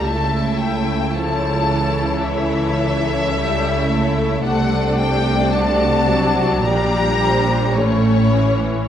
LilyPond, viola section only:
\new Staff \with { instrumentName = "Viola section" } { \time 4/4 \key a \phrygian \tempo 4 = 54 << { e'2. e'4 | d'2 d'4 cis'4 | } \\ { a4 f8 e4. g8 a8~ | a4 a8 fis8 g4 a8 e8 | } >> }